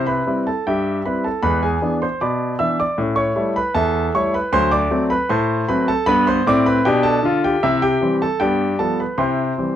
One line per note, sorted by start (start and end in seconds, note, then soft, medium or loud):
0.00 0.20 C3 medium
0.00 0.10 E4 medium
0.07 0.43 B4 medium
0.07 0.38 B5 medium
0.27 0.48 G3 soft
0.27 0.48 C4 soft
0.27 0.49 E4 soft
0.47 0.65 A4 soft
0.47 0.65 A5 medium
0.67 0.99 G2 medium
0.67 1.03 G4 medium
0.67 1.02 E5 medium
0.67 0.97 G5 medium
1.05 1.26 G3 soft
1.05 1.27 C4 soft
1.05 1.27 E4 soft
1.05 1.23 B4 medium
1.05 1.24 B5 medium
1.24 1.43 A4 medium
1.24 1.43 A5 medium
1.42 1.76 E2 medium
1.42 1.66 G#3 soft
1.42 1.61 B4 medium
1.42 1.62 B5 loud
1.62 1.99 G#4 medium
1.62 1.93 G#5 medium
1.81 2.03 E3 soft
1.81 2.03 B3 soft
1.81 2.03 D4 medium
2.02 2.20 C5 medium
2.02 2.21 C6 medium
2.21 2.54 B2 medium
2.21 2.57 D5 medium
2.21 2.57 B5 medium
2.21 2.52 D6 medium
2.59 2.81 E3 soft
2.59 2.81 B3 soft
2.59 2.81 D4 soft
2.59 2.77 E5 medium
2.59 2.78 E6 medium
2.80 2.98 D5 medium
2.80 2.98 D6 medium
2.98 3.31 A2 medium
2.98 3.21 C#4 medium
3.16 3.53 C#5 medium
3.16 3.47 C#6 medium
3.36 3.57 G3 medium
3.36 3.58 A3 soft
3.36 3.58 E4 medium
3.56 3.75 B4 medium
3.56 3.75 B5 medium
3.75 4.08 E2 medium
3.75 4.12 A4 medium
3.75 4.12 E5 medium
3.75 4.06 A5 loud
4.15 4.36 G3 soft
4.15 4.36 A3 soft
4.15 4.37 E4 medium
4.15 4.33 C#5 medium
4.15 4.34 C#6 medium
4.34 4.52 B4 medium
4.34 4.53 B5 medium
4.52 4.86 D2 loud
4.52 4.76 F#3 medium
4.52 4.71 C5 medium
4.52 4.72 C6 loud
4.72 5.08 D5 medium
4.72 5.03 D6 loud
4.91 5.12 F#3 medium
4.91 5.12 A3 medium
4.91 5.13 C4 medium
5.10 5.29 B4 medium
5.10 5.30 B5 medium
5.29 5.63 A2 medium
5.29 5.66 C5 medium
5.29 5.66 A5 medium
5.29 5.67 C6 medium
5.69 5.90 F#3 medium
5.69 5.91 A3 medium
5.69 5.91 C4 medium
5.69 5.87 B4 medium
5.69 5.88 B5 loud
5.88 6.07 A4 medium
5.88 6.08 A5 medium
6.06 6.38 G2 medium
6.06 6.39 B3 medium
6.06 6.26 B4 medium
6.06 6.26 B5 loud
6.27 6.46 C5 medium
6.27 6.47 C6 loud
6.47 6.77 A2 medium
6.47 6.79 C4 loud
6.47 6.65 D5 medium
6.47 6.66 D6 loud
6.66 6.85 B4 medium
6.66 6.85 B5 loud
6.85 7.16 B2 loud
6.85 7.17 D4 medium
6.85 7.04 G4 medium
6.85 7.04 G5 loud
7.03 7.41 A4 medium
7.03 7.41 A5 loud
7.23 7.54 D3 medium
7.23 7.56 F4 medium
7.44 7.62 G4 medium
7.44 7.63 G5 medium
7.63 7.96 C3 medium
7.63 7.81 E4 medium
7.63 7.82 E5 loud
7.82 8.19 G4 medium
7.82 8.13 G5 loud
8.01 8.23 E3 medium
8.01 8.24 G3 soft
8.01 8.24 C4 medium
8.22 8.40 A4 medium
8.22 8.41 A5 medium
8.40 8.74 G2 medium
8.40 8.63 B3 medium
8.40 8.77 G4 medium
8.40 8.77 D5 medium
8.40 8.77 G5 medium
8.79 9.01 F3 soft
8.79 9.01 G3 soft
8.79 9.01 B3 soft
8.79 8.98 A4 medium
8.79 8.99 A5 medium
9.00 9.18 B4 medium
9.00 9.19 B5 medium
9.18 9.52 C3 medium
9.18 9.41 E4 soft
9.18 9.76 C5 medium
9.18 9.76 G5 medium
9.18 9.76 C6 medium
9.58 9.76 E3 soft
9.58 9.76 G3 soft
9.58 9.76 C4 soft